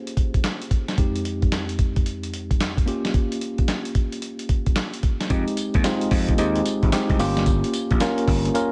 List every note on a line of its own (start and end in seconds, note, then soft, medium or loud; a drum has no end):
0.00 0.66 A#3 medium
0.00 0.67 C#4 medium
0.00 0.67 F4 medium
0.00 0.67 G4 medium
0.07 closed hi-hat medium
0.17 kick medium
0.17 closed hi-hat medium
0.34 kick medium
0.34 closed hi-hat soft
0.44 snare loud
0.44 clap medium
0.44 closed hi-hat medium
0.62 closed hi-hat soft
0.71 kick medium
0.71 closed hi-hat medium
0.88 snare medium
0.88 closed hi-hat medium
0.97 2.83 F2 medium
0.97 2.83 G#3 medium
0.97 2.83 C4 medium
0.97 2.84 D#4 medium
0.97 2.84 G4 medium
0.97 kick loud
0.97 closed hi-hat medium
1.16 closed hi-hat medium
1.25 closed hi-hat medium
1.42 kick medium
1.42 closed hi-hat soft
1.52 snare loud
1.52 clap medium
1.52 closed hi-hat medium
1.69 closed hi-hat medium
1.79 kick medium
1.79 closed hi-hat medium
1.96 kick medium
1.96 closed hi-hat soft
2.06 closed hi-hat medium
2.23 closed hi-hat medium
2.34 closed hi-hat medium
2.51 kick medium
2.51 closed hi-hat soft
2.60 snare loud
2.60 clap medium
2.60 closed hi-hat medium
2.77 kick medium
2.77 closed hi-hat medium
2.86 4.99 A#3 medium
2.86 4.99 C#4 medium
2.86 5.00 F4 medium
2.86 5.00 G4 medium
2.86 closed hi-hat medium
3.05 snare medium
3.05 closed hi-hat soft
3.14 kick loud
3.14 closed hi-hat medium
3.32 closed hi-hat medium
3.41 closed hi-hat medium
3.58 kick medium
3.58 closed hi-hat soft
3.68 snare loud
3.68 clap medium
3.68 closed hi-hat medium
3.85 closed hi-hat medium
3.95 kick medium
3.95 closed hi-hat medium
4.12 closed hi-hat soft
4.22 closed hi-hat medium
4.39 closed hi-hat soft
4.49 kick medium
4.49 closed hi-hat medium
4.66 kick medium
4.66 closed hi-hat soft
4.76 snare loud
4.76 clap medium
4.76 closed hi-hat medium
4.94 closed hi-hat medium
5.03 kick medium
5.03 closed hi-hat medium
5.21 snare medium
5.21 closed hi-hat medium
5.30 5.44 F2 loud
5.30 5.76 G#3 medium
5.30 5.76 C4 medium
5.30 5.76 D#4 medium
5.30 5.76 G4 medium
5.30 kick loud
5.30 closed hi-hat medium
5.30 tambourine medium
5.48 closed hi-hat medium
5.57 closed hi-hat medium
5.57 tambourine medium
5.74 5.82 D#2 loud
5.74 kick loud
5.74 closed hi-hat soft
5.84 6.30 G#3 medium
5.84 6.30 C4 medium
5.84 6.30 D#4 medium
5.84 6.30 F4 medium
5.84 snare loud
5.84 clap medium
5.84 closed hi-hat medium
5.84 tambourine medium
6.01 closed hi-hat medium
6.11 6.32 F2 loud
6.11 kick medium
6.11 open hi-hat medium
6.29 kick medium
6.29 closed hi-hat medium
6.38 6.60 D#2 loud
6.38 6.84 G#3 medium
6.38 6.84 C4 medium
6.38 6.84 D#4 medium
6.38 6.85 G4 medium
6.38 closed hi-hat medium
6.38 tambourine medium
6.55 closed hi-hat medium
6.66 closed hi-hat medium
6.66 tambourine medium
6.83 6.90 G#1 loud
6.83 kick medium
6.83 closed hi-hat soft
6.92 7.19 G#3 medium
6.92 7.20 C4 medium
6.92 7.20 D#4 medium
6.92 7.19 G4 medium
6.92 snare loud
6.92 clap loud
6.92 closed hi-hat medium
6.92 tambourine loud
7.09 7.17 C2 medium
7.09 kick loud
7.09 closed hi-hat medium
7.19 7.62 G1 medium
7.19 7.87 A#3 medium
7.19 7.87 C#4 medium
7.19 7.88 F4 medium
7.19 7.88 G4 loud
7.19 open hi-hat medium
7.19 tambourine medium
7.37 snare medium
7.37 closed hi-hat soft
7.46 kick loud
7.46 closed hi-hat medium
7.46 tambourine medium
7.64 closed hi-hat medium
7.73 closed hi-hat medium
7.73 tambourine medium
7.91 7.99 A#1 medium
7.91 kick loud
7.91 closed hi-hat soft
8.00 8.46 A#3 medium
8.00 8.46 C#4 medium
8.00 8.46 F4 medium
8.00 8.47 A#4 loud
8.00 snare loud
8.00 clap medium
8.00 closed hi-hat medium
8.00 tambourine medium
8.18 closed hi-hat medium
8.28 8.49 G1 loud
8.28 kick medium
8.28 open hi-hat medium
8.45 closed hi-hat medium
8.54 8.72 A#3 medium
8.54 8.72 C#4 medium
8.54 8.72 F4 medium
8.54 8.72 A#4 loud
8.54 closed hi-hat medium
8.54 tambourine medium